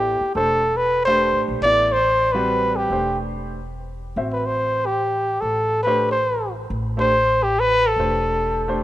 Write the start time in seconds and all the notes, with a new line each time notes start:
Already playing: A1 B3 E4 G4 A4 D5
0.21 muted upright bass stroke
0.35 E1 A3 D4 G4 A4 C5
0.77 B4
1.05 A3 D4 G4 C5
1.33 A1
1.48 A#1
1.61 A1 B3 E4 A4 D5
1.65 D5
1.92 C5
2.32 G3 C4 F#4 B4
2.76 G4
2.90 E1 A3 D4 G4 C5
4.16 A1 C4 F#4 C5 E5
4.33 B4
4.46 C5
4.86 G4
5.41 A1 A4
5.83 A3 D4 B4 C5
5.87 G4
6.11 C5
6.70 A1
6.97 A3 D4 G4 C5
7.44 G4
7.60 B4
7.88 A4
7.96 E1 A3 D4 G4 C5
8.68 A3 D4 G4 C5